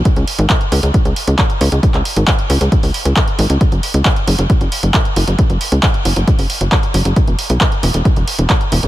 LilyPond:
<<
  \new Staff \with { instrumentName = "Analog synth bass" } { \clef bass \time 4/4 \key cis \phrygian \tempo 4 = 135 r16 cis,16 r16 gis,,16 r8 cis,16 cis,16 r16 cis,16 r16 cis,16 r8 cis,16 cis,16 | r16 cis,16 r16 gis,,16 r8 cis,16 cis,16 r16 cis,16 r16 cis,16 r8 gis,,16 cis,16 | r16 fis,,16 r16 cis,16 r8 fis,,16 fis,,16 r16 fis,,16 r16 fis,,16 r8 fis,,16 fis,,16 | r16 fis,,16 r16 cis,16 r8 fis,,16 fis,,16 r16 fis,,16 r16 fis,,16 r8 fis,,16 fis,,16 |
r16 e,,16 r16 b,,16 r8 e,,16 e,,16 r16 e,,16 r16 e,,16 r8 e,,16 e,,16 | }
  \new DrumStaff \with { instrumentName = "Drums" } \drummode { \time 4/4 <hh bd>16 hh16 hho16 hh16 <hc hh bd>16 hh16 hho16 hh16 <hh bd>16 hh16 hho16 hh16 <hc hh bd>16 hh16 hho16 hh16 | <hh bd>16 <hc hh>16 hho16 hh16 <hc hh bd>16 hh16 hho16 hh16 <hh bd>16 hho16 hho16 hh16 <hc hh bd>16 hh16 hho16 hh16 | <hh bd>16 hh16 hho16 hh16 <hc hh bd>16 hh16 hho16 hh16 <hh bd>16 hh16 hho16 hh16 <hc hh bd>16 hh16 hho16 hh16 | <hh bd>16 hh16 hho16 hh16 <hc hh bd>16 hh16 hho16 hh16 <hh bd>16 hho16 hho16 hh16 <hc hh bd>16 hh16 hho16 hh16 |
<hh bd>16 hh16 hho16 hh16 <hc hh bd>16 hh16 hho16 hh16 <hh bd>16 hh16 hho16 hh16 <hc hh bd>16 hh16 hho16 hh16 | }
>>